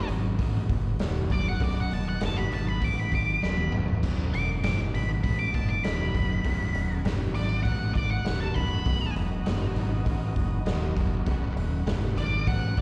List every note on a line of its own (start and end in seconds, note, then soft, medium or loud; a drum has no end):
0.00 1.57 B3 medium
0.00 1.57 D#4 medium
0.00 1.58 F#4 medium
0.09 0.36 G#1 medium
0.09 0.36 B1 medium
0.09 0.36 F#2 medium
0.09 open hi-hat medium
0.38 0.66 A1 medium
0.38 0.93 B1 medium
0.38 0.93 G#2 medium
0.38 kick medium
0.38 open hi-hat medium
0.69 0.96 F#1 medium
0.69 kick medium
0.69 open hi-hat medium
0.99 1.27 D#1 medium
0.99 1.27 B1 medium
0.99 1.27 F#2 medium
0.99 snare loud
0.99 open hi-hat medium
1.30 1.57 F#1 medium
1.30 1.57 B1 medium
1.30 1.57 F#2 medium
1.30 1.46 D5 medium
1.30 kick medium
1.30 open hi-hat medium
1.48 1.61 F#5 medium
1.60 1.87 B0 medium
1.60 2.15 B1 medium
1.60 2.15 F#2 loud
1.60 4.00 B3 medium
1.60 4.01 D#4 medium
1.60 4.00 F#4 medium
1.60 1.77 D5 medium
1.60 4.00 D#5 medium
1.60 kick loud
1.60 open hi-hat medium
1.80 1.93 F#5 loud
1.91 2.18 D#1 medium
1.91 2.07 A5 loud
1.91 open hi-hat medium
2.09 2.22 F#5 medium
2.21 2.48 F#1 loud
2.21 2.48 B1 medium
2.21 2.48 G#2 medium
2.21 snare loud
2.21 open hi-hat medium
2.26 2.38 A5 medium
2.37 2.51 B5 medium
2.50 2.79 G#1 medium
2.50 2.78 B1 medium
2.50 2.78 F#2 medium
2.50 2.68 A5 medium
2.50 open hi-hat medium
2.68 2.84 B5 medium
2.81 3.08 A1 medium
2.81 3.36 B1 medium
2.81 3.36 G#2 medium
2.81 3.00 D6 medium
2.81 kick medium
2.81 open hi-hat medium
3.00 3.13 B5 medium
3.12 3.39 G#1 medium
3.12 3.43 D6 loud
3.12 kick medium
3.12 snare soft
3.12 open hi-hat medium
3.41 3.69 D#1 medium
3.41 3.69 B1 medium
3.41 3.69 F#2 loud
3.41 3.72 B5 loud
3.41 snare medium
3.58 high tom medium
3.71 4.00 B0 medium
3.71 3.99 B1 medium
3.71 3.99 F#2 medium
3.71 mid tom medium
3.88 floor tom medium
4.02 4.30 B0 medium
4.02 4.57 B1 medium
4.02 4.57 F#2 medium
4.02 6.43 B3 medium
4.02 6.42 D#4 medium
4.02 6.42 F#4 medium
4.02 6.42 D#5 medium
4.02 kick loud
4.02 splash medium
4.02 crash medium
4.34 4.60 E1 medium
4.34 4.48 D6 loud
4.34 open hi-hat medium
4.63 4.90 F#1 medium
4.63 4.90 B1 medium
4.63 4.90 G#2 medium
4.63 4.78 D6 loud
4.63 snare loud
4.63 open hi-hat medium
4.93 5.20 G#1 medium
4.93 5.21 B1 medium
4.93 5.21 F#2 medium
4.93 5.09 B5 medium
4.93 open hi-hat medium
5.23 5.51 A1 medium
5.23 5.78 B1 medium
5.23 5.78 G#2 medium
5.23 5.39 B5 medium
5.23 kick medium
5.23 open hi-hat medium
5.39 5.53 D6 medium
5.54 5.81 F#1 medium
5.54 5.69 A5 loud
5.54 kick medium
5.54 snare soft
5.54 open hi-hat medium
5.69 5.84 D6 medium
5.84 6.11 D#1 medium
5.84 6.11 B1 medium
5.84 6.12 F#2 medium
5.84 7.01 B5 loud
5.84 snare loud
5.84 open hi-hat medium
6.14 6.41 F#1 medium
6.14 6.41 B1 medium
6.14 6.42 F#2 medium
6.14 kick medium
6.14 open hi-hat medium
6.44 6.71 B0 loud
6.44 6.99 B1 medium
6.44 6.99 F#2 medium
6.44 8.84 B3 medium
6.44 8.84 D#4 medium
6.44 8.85 F#4 medium
6.44 8.84 F#5 medium
6.44 kick loud
6.44 open hi-hat medium
6.74 7.02 D#1 medium
6.74 open hi-hat medium
7.04 7.32 F#1 loud
7.04 7.32 B1 medium
7.04 7.33 G#2 loud
7.04 snare loud
7.04 open hi-hat medium
7.34 7.62 G#1 medium
7.34 7.62 B1 medium
7.34 7.63 F#2 medium
7.34 7.63 D5 loud
7.34 open hi-hat medium
7.63 7.92 A1 medium
7.63 8.19 B1 medium
7.63 8.20 G#2 medium
7.63 7.94 F#5 loud
7.63 kick medium
7.63 open hi-hat medium
7.94 8.22 G#1 medium
7.94 8.09 D5 loud
7.94 kick medium
7.94 open hi-hat medium
8.10 8.40 F#5 medium
8.24 8.52 D#1 medium
8.24 8.52 B1 loud
8.24 8.53 F#2 loud
8.24 snare loud
8.24 open hi-hat medium
8.40 8.54 A5 medium
8.54 8.83 B0 medium
8.54 8.83 B1 medium
8.54 8.83 F#2 medium
8.54 9.14 B5 loud
8.54 kick medium
8.54 open hi-hat medium
8.85 9.13 B0 loud
8.85 9.40 B1 medium
8.85 9.40 F#2 medium
8.85 11.25 B3 medium
8.85 11.25 D#4 medium
8.85 11.24 F#4 medium
8.85 11.25 D#5 medium
8.85 kick loud
8.85 open hi-hat medium
9.16 9.43 E1 medium
9.16 open hi-hat medium
9.45 9.73 F#1 loud
9.45 9.73 B1 medium
9.45 9.73 G#2 medium
9.45 snare loud
9.45 open hi-hat medium
9.74 10.02 G#1 medium
9.74 10.03 B1 medium
9.74 10.04 F#2 medium
9.74 open hi-hat medium
10.06 10.33 A1 medium
10.06 10.60 B1 medium
10.06 10.60 G#2 medium
10.06 kick medium
10.06 open hi-hat medium
10.36 10.63 F#1 medium
10.36 kick medium
10.36 open hi-hat medium
10.65 10.94 D#1 medium
10.65 10.93 B1 medium
10.65 10.94 F#2 loud
10.65 snare loud
10.65 open hi-hat medium
10.96 11.24 F#1 medium
10.96 11.24 B1 medium
10.96 11.24 F#2 medium
10.96 kick medium
10.96 open hi-hat medium
11.26 11.54 B0 loud
11.26 11.81 B1 medium
11.26 11.81 F#2 loud
11.26 12.81 D#4 medium
11.26 12.81 F#4 medium
11.26 12.81 B4 medium
11.26 12.81 F#5 medium
11.26 kick loud
11.26 open hi-hat medium
11.56 11.83 D#1 medium
11.56 open hi-hat medium
11.86 12.14 F#1 loud
11.86 12.14 B1 medium
11.86 12.14 G#2 loud
11.86 snare loud
11.86 open hi-hat medium
12.15 12.44 G#1 medium
12.15 12.44 B1 medium
12.15 12.45 F#2 loud
12.15 12.47 D5 loud
12.15 open hi-hat medium
12.47 12.75 A1 medium
12.47 12.81 B1 medium
12.47 12.81 G#2 medium
12.47 12.77 F#5 loud
12.47 kick medium
12.47 open hi-hat medium
12.77 12.81 G#1 medium
12.77 12.81 D5 medium
12.77 kick medium
12.77 open hi-hat medium